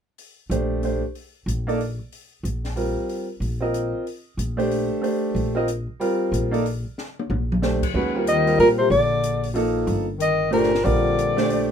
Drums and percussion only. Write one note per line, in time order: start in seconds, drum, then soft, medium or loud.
0.18 open hi-hat soft
0.51 closed hi-hat soft
0.83 open hi-hat soft
1.15 open hi-hat soft
1.48 closed hi-hat soft
1.69 open hi-hat soft
1.81 open hi-hat soft
2.12 open hi-hat soft
2.45 closed hi-hat soft
2.65 snare soft
2.65 open hi-hat soft
2.77 open hi-hat soft
3.09 open hi-hat soft
3.42 open hi-hat soft
3.74 closed hi-hat soft
4.07 open hi-hat soft
4.39 closed hi-hat soft
4.59 open hi-hat soft
4.71 open hi-hat soft
5.04 open hi-hat soft
5.36 open hi-hat soft
5.68 closed hi-hat soft
6.01 open hi-hat soft
6.34 closed hi-hat soft
6.54 open hi-hat soft
6.66 open hi-hat soft
6.98 snare soft
7.19 high tom soft
7.30 high tom soft
7.52 mid tom medium
7.63 snare soft
7.83 kick medium
7.83 crash medium
8.27 closed hi-hat soft
8.47 open hi-hat soft
8.60 open hi-hat soft
8.92 open hi-hat soft
9.23 closed hi-hat soft
9.43 open hi-hat soft
9.55 open hi-hat soft
9.87 open hi-hat soft
10.20 closed hi-hat soft
10.53 open hi-hat soft
10.64 snare soft
10.75 snare soft
10.86 open hi-hat soft
11.19 closed hi-hat soft
11.38 snare soft
11.38 open hi-hat soft
11.50 open hi-hat soft